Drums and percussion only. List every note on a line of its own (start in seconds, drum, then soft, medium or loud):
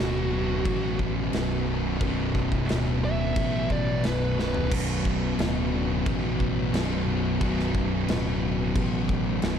0.00 snare loud
0.65 kick loud
0.65 crash medium
0.99 kick medium
1.33 snare loud
1.33 crash medium
2.01 kick loud
2.01 crash medium
2.35 kick medium
2.52 kick medium
2.69 snare loud
2.69 crash medium
3.36 kick loud
3.36 crash medium
3.70 kick medium
4.04 snare loud
4.04 crash medium
4.39 snare medium
4.54 floor tom loud
4.72 kick loud
4.72 crash loud
4.72 crash medium
5.05 kick medium
5.39 snare loud
5.39 crash medium
6.06 kick loud
6.06 crash medium
6.40 kick medium
6.74 snare loud
6.74 crash medium
7.41 kick loud
7.41 crash medium
7.60 snare soft
7.75 kick medium
8.08 snare loud
8.08 crash medium
8.76 kick loud
8.76 crash medium
9.09 kick medium
9.42 snare loud
9.42 crash medium